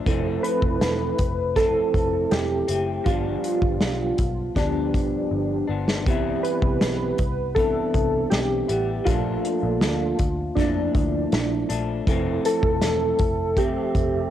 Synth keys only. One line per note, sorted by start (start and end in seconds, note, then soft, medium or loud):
0.43 1.59 B4 loud
1.56 2.33 A4 medium
2.31 3.09 G4 medium
3.06 4.52 F4 medium
4.56 5.65 D4 medium
6.43 7.60 B4 medium
7.55 8.33 A4 medium
8.30 9.08 G4 medium
9.05 10.61 F4 medium
10.55 11.65 D4 medium
12.46 13.61 A4 loud
13.58 14.29 G4 medium